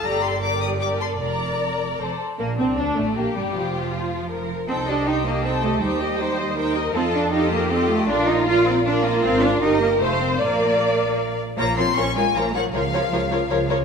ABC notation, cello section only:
X:1
M:3/4
L:1/8
Q:1/4=157
K:Bb
V:1 name="Cello section"
G,,6 | F,,4 F,, z | B, C D A, B, G, | F,4- F, z |
C D E B, C A, | G,4- G, z | C D E B, C A, | D E F C D B, |
C D E B, A, C | B,4 z2 | [K:Bbm] B, C D A, B, G, | F,4- F, z |]